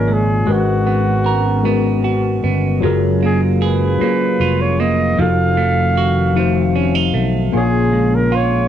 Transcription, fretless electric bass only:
0.00 0.44 G#1 medium
0.48 2.40 G#1 loud
2.44 2.79 G1 medium
2.83 3.97 F#1 loud
4.01 muted fretless electric bass stroke medium
4.40 5.14 F1 medium
5.18 7.10 F1 loud
7.14 7.49 B1 medium
7.54 8.67 A#1 medium

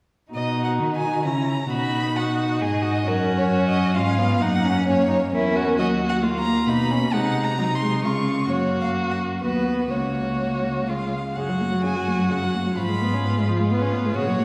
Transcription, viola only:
0.34 1.28 F#4 soft
1.27 1.47 E4 soft
1.47 1.55 E4 soft
1.70 3.04 D#4 soft
3.08 3.96 C#4 soft
3.96 4.20 C#4 soft
4.18 4.43 B3 soft
4.42 4.87 A#3 soft
4.87 5.32 A#3 soft
5.33 5.79 C#4 soft
5.78 6.24 F#3 soft
6.23 6.44 A#3 medium
6.44 7.15 A#3 soft
7.13 7.58 G#3 soft
7.59 7.67 F#3 soft
7.82 8.04 G#3 soft
8.05 8.49 G#3 soft
8.50 9.45 A#3 soft
9.43 9.91 B3 soft
9.91 10.91 A#3 soft
10.89 11.17 G#3 soft
11.37 11.50 C#3 soft
11.49 11.62 F#3 soft
11.60 11.73 A#3 soft
11.72 11.85 F#3 soft
11.83 11.97 C#3 soft
11.96 12.09 F#3 soft
12.07 12.20 A#3 soft
12.18 12.32 F#3 soft
12.30 12.44 C#3 soft
12.43 12.56 F#3 soft
12.55 12.68 A#3 soft
12.67 12.77 F#3 soft
12.77 12.90 F3 soft
12.89 13.03 G#3 soft
13.02 13.15 B3 soft
13.14 13.26 C#4 soft
13.25 13.38 B3 soft
13.37 13.49 G#3 soft
13.48 13.61 F3 soft
13.59 13.72 G#3 soft
13.71 13.83 B3 soft
13.81 13.94 C#4 soft
13.93 14.07 B3 soft
14.05 14.15 G#3 soft
14.15 14.28 C#3 soft
14.27 14.40 F#3 soft
14.38 14.45 A#3 soft

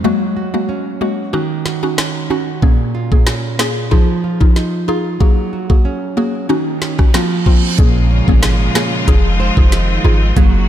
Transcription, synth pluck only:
0.04 0.50 G#3 medium
0.04 0.50 A#3 medium
0.04 0.50 F#4 loud
0.54 0.70 G#3 medium
0.54 0.70 A#3 medium
0.54 0.70 F#4 medium
1.01 1.19 G#3 medium
1.01 1.19 A#3 medium
1.01 1.19 F#4 medium
1.33 1.51 C#4 medium
1.33 1.51 D#4 medium
1.33 1.51 F#4 loud
1.83 1.99 C#4 medium
1.83 1.99 D#4 medium
1.83 1.99 F#4 medium
2.30 2.48 C#4 medium
2.30 2.48 D#4 medium
2.30 2.48 F#4 medium
2.62 3.08 A#3 medium
2.62 3.08 C#4 medium
2.62 3.08 G#4 loud
3.12 3.28 A#3 medium
3.12 3.28 C#4 medium
3.12 3.28 G#4 medium
3.59 3.77 A#3 medium
3.59 3.77 C#4 medium
3.59 3.77 G#4 medium
3.91 4.09 D#4 medium
3.91 4.09 F4 medium
3.91 4.09 G#4 loud
4.41 4.57 D#4 medium
4.41 4.57 F4 medium
4.41 4.57 G#4 medium
4.88 5.06 D#4 medium
4.88 5.06 F4 medium
4.88 5.06 G#4 medium
5.20 5.66 A#3 medium
5.20 5.66 F#4 medium
5.20 5.66 G#4 loud
5.70 5.86 A#3 medium
5.70 5.86 F#4 medium
5.70 5.86 G#4 medium
6.17 6.35 A#3 medium
6.17 6.35 F#4 medium
6.17 6.35 G#4 medium
6.49 6.67 C#4 medium
6.49 6.67 D#4 medium
6.49 6.67 F#4 loud
6.99 7.15 C#4 medium
6.99 7.15 D#4 medium
6.99 7.15 F#4 medium
7.14 7.44 A#3 medium
7.14 7.44 C4 medium
7.14 7.44 F4 loud
7.46 7.64 A#3 medium
7.46 7.64 C4 medium
7.46 7.64 F4 medium
7.79 8.24 A#3 medium
7.79 8.24 C#4 medium
7.79 8.24 G#4 loud
8.28 8.44 A#3 medium
8.28 8.44 C#4 medium
8.28 8.44 G#4 medium
8.76 8.93 A#3 medium
8.76 8.93 C#4 medium
8.76 8.93 G#4 medium
9.08 9.25 D#4 medium
9.08 9.25 F4 medium
9.08 9.26 G#4 loud
9.57 9.73 D#4 medium
9.57 9.73 F4 medium
9.57 9.73 G#4 medium
10.04 10.22 D#4 medium
10.04 10.22 F4 medium
10.04 10.22 G#4 medium
10.37 10.68 A#3 medium
10.37 10.68 F#4 medium
10.37 10.68 G#4 loud

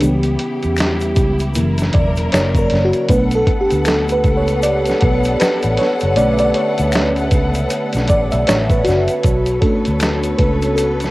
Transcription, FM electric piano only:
0.00 1.13 E3 medium
0.00 1.13 G3 soft
0.00 1.13 B3 medium
0.00 1.64 G4 medium
1.55 2.67 C#3 medium
1.55 2.67 E3 medium
1.55 2.67 A#3 medium
1.94 2.33 D5 medium
2.33 2.56 C#5 medium
2.59 2.85 A#4 medium
2.85 3.10 F#4 medium
3.09 6.13 A3 medium
3.09 6.13 B3 medium
3.09 6.13 D4 medium
3.09 3.21 B4 medium
3.35 3.61 A4 medium
3.61 3.87 G4 medium
3.87 3.98 A4 medium
4.12 4.24 B4 medium
4.37 4.64 C#5 medium
4.63 4.99 D5 medium
5.40 5.79 B4 medium
5.79 6.14 C#5 loud
6.16 7.28 D3 medium
6.16 7.28 A3 soft
6.16 7.28 C#4 medium
6.16 6.33 D5 loud
6.33 6.39 E5 medium
6.40 6.55 D5 loud
6.55 7.67 C#5 medium
8.09 8.33 D5 medium
8.32 8.48 E5 medium
8.48 8.69 C#5 medium
8.71 9.07 B4 medium
8.84 9.64 F#4 medium
9.61 11.11 A3 soft
9.61 11.11 C#4 medium
9.61 11.11 D4 soft
9.61 10.35 A4 medium
10.38 10.75 B4 medium
10.76 11.11 A4 medium

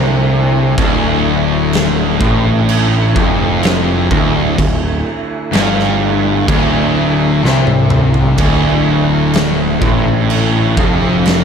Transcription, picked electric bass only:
0.00 0.74 C2 loud
0.78 2.17 D1 loud
2.21 3.12 A1 loud
3.16 4.07 F1 loud
4.11 4.55 D1 loud
4.58 5.03 D1 medium
5.54 6.45 G1 medium
6.48 7.40 D1 medium
7.44 8.36 C2 medium
8.38 9.78 D1 loud
9.81 10.73 A1 loud
10.77 11.44 F1 loud

